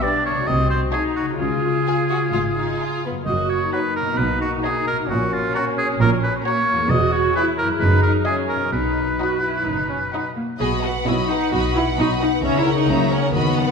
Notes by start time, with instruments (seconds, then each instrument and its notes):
Already playing: harp B2 G3 G4 B4
0.03 viola section D4, violin section G4 B4 G5, oboe D5
0.26 oboe C#5
0.30 harp C3
0.35 harp A3
0.39 harp F#4
0.47 double bass section C2, cello section C3, viola section C4, oboe D#5
0.70 oboe C5
0.93 viola section D#4, violin section F#4 D#5 A5, oboe G#4
1.16 oboe F#4
1.22 harp C#3
1.26 harp G#3
1.31 harp F4
1.35 harp C#5
1.40 double bass section C#2, cello section C#3, viola section F4, oboe G#4
1.87 violin section G#4 G#5
2.10 violin section F#4
2.33 double bass section G#1, cello section G#2, violin section F4
2.57 violin section D#4
2.80 violin section F4 G#5
3.06 violin section B3
3.10 harp F#2
3.14 harp A#3
3.18 harp F#4
3.23 cello section F#2, harp C#5, oboe D#5
3.27 double bass section F#1, viola section F#4
3.50 oboe C#5
3.73 viola section D#4, violin section F#4 C#5 A#5, oboe B4
3.96 oboe A#4
4.01 harp B2
4.06 harp A#3
4.10 harp F#4
4.15 oboe B4, harp D#5
4.19 double bass section B1, cello section B2
4.41 oboe F#4
4.64 violin section F#4 D#5 A#5, oboe G#4
4.87 oboe A#4
4.92 harp A#2
4.97 harp A#3
5.01 harp F#4
5.10 double bass section A#1, cello section A#2, viola section C#4, oboe F#4
5.33 oboe F4
5.56 oboe F#4, violin section F#4 C#5 A#5
5.78 oboe G#4
6.00 double bass section A#1, cello section A#2, oboe A#4
6.24 oboe B4
6.45 viola section A#3, violin section F#4 C#5 A#5, oboe C#5
6.72 harp E2
6.77 harp G#3
6.81 harp E4
6.86 harp C#5
6.90 double bass section E1, cello section E2, viola section F#4, oboe D#5
7.13 oboe C#5
7.35 violin section E4 C#5 G#5, viola section E4, oboe B4
7.58 oboe A#4
7.63 harp F#2
7.67 harp G#3
7.72 harp E4
7.76 oboe B4, harp D#5
7.81 double bass section F#1, cello section F#2, viola section D#4
8.03 oboe A#4
8.26 viola section C#4, violin section E4 D#5 G#5, oboe G#4
8.49 oboe A#4
8.55 harp B2
8.60 harp F#3
8.64 harp D#4
8.69 harp D#5
8.73 double bass section B1, cello section B2, viola section D#4, oboe B4
9.19 violin section D#4 D#5 F#5, viola section F#4
9.43 viola section E4
9.66 double bass section F#1, cello section F#2, viola section D#4
9.90 viola section C#4
10.13 violin section D#4 D#5 F#5, viola section D#4
10.37 viola section A#3
10.60 double bass section B1, cello section B2, harp B2, violin section F#4 D#5 B5, viola section G#4
10.83 harp B3, viola section F#4, violin section B4 F#5
11.06 double bass section B1, cello section B2, french horn section F#3 D#4, harp D#4, viola section E4, violin section F#4 D#5 B5
11.30 viola section D#4, harp B4, violin section B4 F#5
11.52 double bass section B1, cello section B2, harp B2, viola section F#4, violin section F#4 D#5 B5
11.75 harp B3, viola section E4, violin section B4 F#5
11.98 double bass section B1, cello section B2, french horn section F#3 D#4, harp D#4, viola section D#4, violin section F#4 D#5 B5
12.21 viola section D#4, violin section B4 F#5, harp B4
12.43 double bass section C#2, cello section C#3, harp C#3, viola section C#4, violin section C#5 E5 A#5
12.60 viola section E4
12.66 harp C#4, violin section A#4 C#5 F#5
12.74 viola section D#4
12.88 double bass section C#2, cello section C#3, french horn section F#3 A#3, harp E4, violin section C#5 E5 A#5
13.12 viola section C#4, harp A#4, violin section A#4 C#5 F#5
13.34 double bass section D#2, cello section D#3, harp D#3, viola section B3, violin section F#4 D#5 B5
13.57 harp F#3, violin section B4 F#5